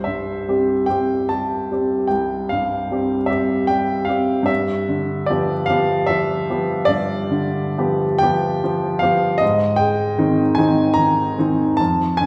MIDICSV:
0, 0, Header, 1, 2, 480
1, 0, Start_track
1, 0, Tempo, 818554
1, 1239, Tempo, 797872
1, 2669, Time_signature, 12, 3, 24, 8
1, 4119, Tempo, 873362
1, 5079, Tempo, 764331
1, 6039, Tempo, 808625
1, 7278, End_track
2, 0, Start_track
2, 0, Title_t, "Grand piano"
2, 0, Program_c, 0, 0
2, 0, Control_c, 0, 64, 127
2, 0, Note_on_c, 0, 36, 39
2, 0, Note_on_c, 0, 72, 58
2, 23, Note_on_c, 0, 76, 60
2, 41, Note_on_c, 0, 43, 29
2, 284, Note_on_c, 0, 55, 31
2, 287, Note_on_c, 0, 60, 33
2, 288, Note_on_c, 0, 67, 36
2, 428, Note_off_c, 0, 43, 0
2, 502, Note_off_c, 0, 55, 0
2, 503, Note_off_c, 0, 60, 0
2, 503, Note_off_c, 0, 67, 0
2, 506, Note_on_c, 0, 79, 65
2, 516, Note_off_c, 0, 76, 0
2, 525, Note_on_c, 0, 55, 31
2, 526, Note_on_c, 0, 60, 31
2, 528, Note_on_c, 0, 67, 32
2, 743, Note_off_c, 0, 55, 0
2, 744, Note_off_c, 0, 60, 0
2, 745, Note_off_c, 0, 67, 0
2, 756, Note_on_c, 0, 81, 66
2, 757, Note_off_c, 0, 79, 0
2, 772, Note_on_c, 0, 55, 30
2, 997, Note_off_c, 0, 55, 0
2, 1005, Note_on_c, 0, 60, 29
2, 1006, Note_on_c, 0, 55, 31
2, 1012, Note_on_c, 0, 67, 34
2, 1216, Note_off_c, 0, 36, 0
2, 1216, Note_off_c, 0, 60, 0
2, 1217, Note_off_c, 0, 55, 0
2, 1217, Note_on_c, 0, 79, 57
2, 1220, Note_off_c, 0, 67, 0
2, 1234, Note_off_c, 0, 81, 0
2, 1235, Note_on_c, 0, 36, 34
2, 1466, Note_off_c, 0, 79, 0
2, 1468, Note_on_c, 0, 77, 66
2, 1485, Note_on_c, 0, 43, 33
2, 1721, Note_on_c, 0, 55, 34
2, 1724, Note_on_c, 0, 60, 32
2, 1727, Note_on_c, 0, 67, 35
2, 1865, Note_off_c, 0, 43, 0
2, 1931, Note_on_c, 0, 76, 66
2, 1935, Note_off_c, 0, 55, 0
2, 1937, Note_off_c, 0, 60, 0
2, 1939, Note_off_c, 0, 67, 0
2, 1950, Note_on_c, 0, 55, 33
2, 1952, Note_off_c, 0, 77, 0
2, 1955, Note_on_c, 0, 60, 34
2, 1956, Note_on_c, 0, 67, 38
2, 2167, Note_off_c, 0, 55, 0
2, 2170, Note_off_c, 0, 60, 0
2, 2170, Note_off_c, 0, 67, 0
2, 2178, Note_on_c, 0, 79, 75
2, 2182, Note_off_c, 0, 76, 0
2, 2193, Note_on_c, 0, 55, 37
2, 2403, Note_on_c, 0, 77, 66
2, 2418, Note_off_c, 0, 55, 0
2, 2422, Note_off_c, 0, 79, 0
2, 2427, Note_on_c, 0, 55, 34
2, 2427, Note_on_c, 0, 60, 35
2, 2430, Note_on_c, 0, 67, 36
2, 2632, Note_on_c, 0, 43, 50
2, 2643, Note_off_c, 0, 36, 0
2, 2643, Note_off_c, 0, 55, 0
2, 2644, Note_off_c, 0, 60, 0
2, 2645, Note_off_c, 0, 67, 0
2, 2649, Note_on_c, 0, 76, 74
2, 2656, Note_off_c, 0, 77, 0
2, 2681, Control_c, 0, 64, 0
2, 2684, Note_off_c, 0, 72, 0
2, 2768, Control_c, 0, 64, 127
2, 2908, Note_on_c, 0, 50, 35
2, 3135, Note_on_c, 0, 74, 68
2, 3143, Note_off_c, 0, 76, 0
2, 3157, Note_on_c, 0, 53, 39
2, 3158, Note_on_c, 0, 59, 37
2, 3160, Note_on_c, 0, 67, 41
2, 3295, Note_off_c, 0, 50, 0
2, 3372, Note_off_c, 0, 53, 0
2, 3372, Note_on_c, 0, 77, 77
2, 3373, Note_off_c, 0, 59, 0
2, 3374, Note_off_c, 0, 67, 0
2, 3385, Note_off_c, 0, 74, 0
2, 3393, Note_on_c, 0, 53, 41
2, 3398, Note_on_c, 0, 59, 39
2, 3398, Note_on_c, 0, 67, 44
2, 3614, Note_off_c, 0, 53, 0
2, 3616, Note_off_c, 0, 59, 0
2, 3616, Note_off_c, 0, 67, 0
2, 3617, Note_on_c, 0, 76, 75
2, 3627, Note_off_c, 0, 77, 0
2, 3635, Note_on_c, 0, 53, 40
2, 3869, Note_off_c, 0, 53, 0
2, 3878, Note_on_c, 0, 53, 39
2, 3880, Note_on_c, 0, 59, 39
2, 3881, Note_on_c, 0, 67, 43
2, 4078, Note_off_c, 0, 43, 0
2, 4090, Note_on_c, 0, 74, 81
2, 4096, Note_off_c, 0, 53, 0
2, 4097, Note_off_c, 0, 59, 0
2, 4097, Note_off_c, 0, 67, 0
2, 4110, Note_off_c, 0, 76, 0
2, 4111, Note_on_c, 0, 43, 43
2, 4343, Note_on_c, 0, 50, 40
2, 4604, Note_on_c, 0, 53, 38
2, 4604, Note_on_c, 0, 59, 41
2, 4607, Note_on_c, 0, 67, 44
2, 4748, Note_off_c, 0, 50, 0
2, 4825, Note_on_c, 0, 79, 92
2, 4829, Note_off_c, 0, 53, 0
2, 4829, Note_off_c, 0, 59, 0
2, 4831, Note_off_c, 0, 67, 0
2, 4836, Note_off_c, 0, 74, 0
2, 4846, Note_on_c, 0, 53, 43
2, 4848, Note_on_c, 0, 59, 46
2, 4848, Note_on_c, 0, 67, 50
2, 5057, Note_off_c, 0, 53, 0
2, 5057, Note_off_c, 0, 59, 0
2, 5058, Note_off_c, 0, 67, 0
2, 5074, Note_on_c, 0, 53, 48
2, 5296, Note_on_c, 0, 77, 78
2, 5305, Note_off_c, 0, 53, 0
2, 5311, Note_off_c, 0, 79, 0
2, 5314, Note_on_c, 0, 53, 42
2, 5318, Note_on_c, 0, 59, 38
2, 5320, Note_on_c, 0, 67, 44
2, 5532, Note_off_c, 0, 43, 0
2, 5532, Note_off_c, 0, 53, 0
2, 5534, Note_off_c, 0, 59, 0
2, 5535, Note_off_c, 0, 67, 0
2, 5538, Note_on_c, 0, 75, 81
2, 5547, Note_off_c, 0, 77, 0
2, 5560, Note_on_c, 0, 44, 52
2, 5573, Control_c, 0, 64, 0
2, 5656, Control_c, 0, 64, 127
2, 5780, Note_on_c, 0, 79, 84
2, 5787, Note_off_c, 0, 75, 0
2, 5800, Note_on_c, 0, 56, 41
2, 6043, Note_on_c, 0, 51, 45
2, 6045, Note_on_c, 0, 63, 43
2, 6046, Note_on_c, 0, 60, 43
2, 6180, Note_off_c, 0, 56, 0
2, 6251, Note_off_c, 0, 51, 0
2, 6252, Note_off_c, 0, 60, 0
2, 6252, Note_off_c, 0, 63, 0
2, 6260, Note_on_c, 0, 80, 74
2, 6264, Note_off_c, 0, 79, 0
2, 6278, Note_on_c, 0, 51, 44
2, 6282, Note_on_c, 0, 60, 44
2, 6282, Note_on_c, 0, 63, 45
2, 6489, Note_off_c, 0, 51, 0
2, 6491, Note_off_c, 0, 60, 0
2, 6491, Note_off_c, 0, 63, 0
2, 6491, Note_on_c, 0, 82, 83
2, 6503, Note_off_c, 0, 80, 0
2, 6511, Note_on_c, 0, 51, 38
2, 6748, Note_off_c, 0, 51, 0
2, 6757, Note_on_c, 0, 51, 40
2, 6759, Note_on_c, 0, 60, 42
2, 6763, Note_on_c, 0, 63, 43
2, 6972, Note_off_c, 0, 44, 0
2, 6975, Note_off_c, 0, 51, 0
2, 6976, Note_off_c, 0, 60, 0
2, 6978, Note_off_c, 0, 63, 0
2, 6985, Note_on_c, 0, 81, 78
2, 6987, Note_off_c, 0, 82, 0
2, 7004, Note_on_c, 0, 41, 50
2, 7009, Control_c, 0, 64, 0
2, 7117, Control_c, 0, 64, 127
2, 7224, Note_on_c, 0, 80, 84
2, 7234, Note_off_c, 0, 81, 0
2, 7247, Note_on_c, 0, 50, 37
2, 7278, Note_off_c, 0, 41, 0
2, 7278, Note_off_c, 0, 50, 0
2, 7278, Note_off_c, 0, 80, 0
2, 7278, End_track
0, 0, End_of_file